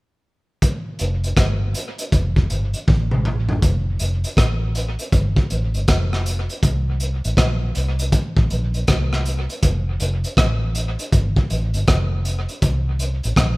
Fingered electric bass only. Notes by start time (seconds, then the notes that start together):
1.01 F1
1.37 G1
2.13 F1
2.51 G1
2.89 A1
3.63 F1
4.01 F1
4.38 A1
5.13 G1
5.52 A1
5.75 G1
5.89 F1
6.64 C2
7.25 A1
7.38 A#1
7.77 C2
8.37 A1
8.52 A#1
8.89 C2
9.64 F1
10.02 F1
10.38 A1
11.13 G1
11.51 A1
11.75 G1
11.88 F1
12.63 C2
13.25 A1
13.37 A#1